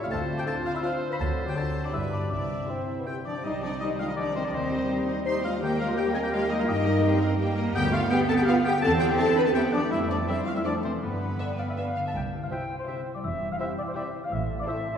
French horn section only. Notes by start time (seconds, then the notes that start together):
Already playing: C#4
0.11 C4 F4
1.21 C4 F#4
1.56 C4 F#4
1.95 B3 G4
2.33 C4 E4
2.70 C4 E4
3.09 G4
3.27 D4
3.46 D#4
3.65 D4
3.84 D#4
4.00 F4
4.12 D#4
4.20 D4
4.37 C4
4.48 D4
4.57 C4
5.25 C5
5.46 F4
5.64 G4
5.80 F4
5.94 G4
6.14 G#4
6.26 G4
6.34 F4
6.51 D#4
6.62 F4
6.69 D#4
7.75 G4
7.94 F4
8.12 G4
8.30 A4
8.41 G4
8.48 F4
8.66 G4
8.83 A4
9.01 G4
9.21 A4
9.38 B4
9.47 A4
9.52 G4
9.72 D4
9.90 E4
10.07 D4
10.26 E4
10.45 F4
10.56 E4
10.65 D4
10.82 C4
11.02 B3
12.51 C4 E4
12.87 C4 E4
13.60 C4 G4
13.96 C4 G4
14.67 C4 A4